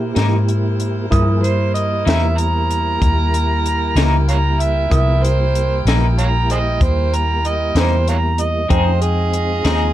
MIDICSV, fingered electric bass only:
0, 0, Header, 1, 2, 480
1, 0, Start_track
1, 0, Tempo, 631579
1, 850, Time_signature, 12, 3, 24, 8
1, 7549, End_track
2, 0, Start_track
2, 0, Title_t, "Fingered electric bass"
2, 0, Program_c, 0, 33
2, 0, Note_on_c, 0, 46, 75
2, 106, Note_off_c, 0, 46, 0
2, 124, Note_on_c, 0, 44, 87
2, 826, Note_off_c, 0, 44, 0
2, 849, Note_on_c, 0, 43, 83
2, 1549, Note_off_c, 0, 43, 0
2, 1568, Note_on_c, 0, 40, 90
2, 2268, Note_off_c, 0, 40, 0
2, 2292, Note_on_c, 0, 39, 81
2, 2990, Note_off_c, 0, 39, 0
2, 3005, Note_on_c, 0, 37, 91
2, 3706, Note_off_c, 0, 37, 0
2, 3733, Note_on_c, 0, 36, 83
2, 4430, Note_off_c, 0, 36, 0
2, 4448, Note_on_c, 0, 34, 88
2, 5147, Note_off_c, 0, 34, 0
2, 5177, Note_on_c, 0, 39, 82
2, 5872, Note_off_c, 0, 39, 0
2, 5891, Note_on_c, 0, 40, 93
2, 6588, Note_off_c, 0, 40, 0
2, 6611, Note_on_c, 0, 41, 85
2, 7308, Note_off_c, 0, 41, 0
2, 7334, Note_on_c, 0, 39, 89
2, 7549, Note_off_c, 0, 39, 0
2, 7549, End_track
0, 0, End_of_file